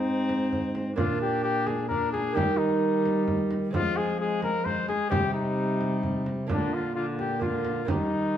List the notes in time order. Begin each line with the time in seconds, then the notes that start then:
Already playing: G#2 G#3 C4 D#4
0.29 frame drum
0.53 frame drum
0.75 frame drum
0.96 A#2 A#3 D4 F4, frame drum
1.21 G4
1.44 G4
1.67 G#4, frame drum
1.89 D4 A#4, frame drum
2.12 G#4, frame drum
2.33 D#3 G3 A#3 D#4 G4
2.37 frame drum
2.57 D#4
3.05 frame drum
3.28 frame drum
3.51 frame drum
3.71 F3 G#3 C4 F4, frame drum
3.75 F3 G#3
3.97 G#4
4.20 G#3 G#4
4.42 A#4, frame drum
4.65 G#3 C5, frame drum
4.88 G#4, frame drum
5.10 C3 G3 C4 G4, frame drum
5.34 D#4
5.81 frame drum
6.03 frame drum
6.26 frame drum
6.47 A#2 D3 A#3 D4 F4, frame drum
6.51 D4
6.74 F4
6.95 D3 F4
7.19 G4, frame drum
7.39 D3 A#3 D4 F4, frame drum
7.65 frame drum
7.85 D#3 G3 A#3 D#4 G4, frame drum
7.90 D#4